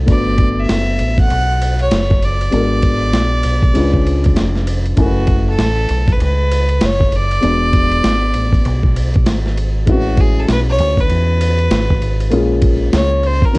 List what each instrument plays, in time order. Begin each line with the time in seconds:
0.06 fingered electric bass G1, grand piano A3 B3 D4 F#4 B4, kick, ride
0.10 fiddle D5
0.38 kick, ride
0.60 fiddle E5
0.69 fingered electric bass F#1, snare, hi-hat pedal, ride
0.99 fingered electric bass A1, ride
1.18 fiddle F#5, kick, ride
1.30 fingered electric bass B1, ride
1.62 ride
1.79 fiddle C#5, ride
1.91 fingered electric bass F#1, snare, hi-hat pedal, ride
2.11 kick, snare
2.23 fiddle D5, ride
2.41 ride
2.51 fingered electric bass G#1, grand piano G#3 B3 D4 F#4 A#4, ride
2.82 kick, ride
3.14 fingered electric bass A#1, snare, hi-hat pedal, ride
3.43 fingered electric bass B1, ride
3.63 kick, ride
3.73 fingered electric bass C#2, grand piano G#3 C#4 D4 F4 B4, ride
3.93 kick
4.06 ride
4.24 kick, ride
4.36 fingered electric bass F1, snare, hi-hat pedal, ride
4.55 snare
4.67 ride
4.86 ride
4.96 fingered electric bass F#1, grand piano C#3 A3 E4 A#4 G#5, fiddle F#4, kick, ride
5.07 grand piano B4
5.27 kick, ride
5.50 fiddle A4
5.59 fingered electric bass A1, snare, hi-hat pedal, ride
5.89 fingered electric bass B1, ride
6.08 kick, ride
6.12 fiddle B4
6.20 fingered electric bass C#2, fiddle B4, ride
6.52 ride
6.69 ride
6.81 fingered electric bass F#1, snare, hi-hat pedal, ride
6.85 fiddle C#5
7.00 kick, snare
7.12 fiddle D5, ride
7.31 ride
7.41 fingered electric bass E1, grand piano G#3 B3 D4 F#4 B4, ride
7.73 kick, ride
7.91 ride
8.04 fingered electric bass G#1, snare, hi-hat pedal, ride
8.34 fingered electric bass A1, ride
8.53 kick, ride
8.65 fingered electric bass B1, ride
8.83 kick
8.96 ride
9.14 kick, ride
9.26 fingered electric bass G#1, snare, hi-hat pedal, ride
9.46 snare
9.57 ride
9.86 fingered electric bass A1, grand piano G#3 C4 E4 F#4 B4, fiddle F#4, kick, ride
9.93 grand piano C#4
10.17 fiddle G#4, kick, ride
10.39 fiddle A4
10.49 fingered electric bass B1, fiddle B4, snare, hi-hat pedal, ride
10.70 fiddle C#5
10.78 fingered electric bass D2, ride
10.97 fiddle B4, kick, ride
11.09 fingered electric bass E2, ride
11.41 ride
11.59 ride
11.71 fingered electric bass G#1, snare, hi-hat pedal, ride
11.90 kick, snare
12.02 ride
12.21 ride
12.31 fingered electric bass A#1, grand piano G#3 A#3 C#4 F4 G#4, ride
12.62 kick, ride
12.93 fingered electric bass C#2, fiddle C#5, snare, hi-hat pedal, ride
13.23 fiddle C5, ride
13.42 fiddle A#4, kick, ride
13.53 fingered electric bass D#2, grand piano A#3 C#4 D#4 F4, ride